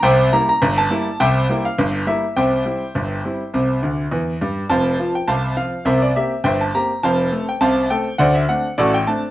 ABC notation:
X:1
M:2/4
L:1/16
Q:"Swing 16ths" 1/4=103
K:Cmix
V:1 name="Grand piano"
[ceg]2 b b2 a3 | [ceg]3 f3 e2 | [ceg]8- | [ceg]6 z2 |
[cfa]3 g [cfa]2 f2 | [Bce] d e2 [ceg] a b2 | [cfa]3 g [cfa]2 g2 | [cd^f] e f2 [^FAd] g a2 |]
V:2 name="Grand piano" clef=bass
[C,,C,]2 [G,B,E]2 [G,,,G,,]2 [G,B,E]2 | [C,,C,]2 [G,B,E]2 [G,,,G,,]2 [G,B,E]2 | [C,,C,]2 [G,CE]2 [G,,,G,,]2 [G,CE]2 | [C,,C,]2 [D,,D,]2 [E,,E,]2 [G,,G,]2 |
[F,,,F,,]2 [F,CF]2 [C,,C,]2 [F,CF]2 | [C,,C,]2 [B,CG]2 [G,,,G,,]2 [B,CG]2 | [F,,,F,,]2 [A,CA]2 [C,,C,]2 [A,CA]2 | [D,,D,]2 [A,CD]2 [A,,,A,,]2 [A,CD]2 |]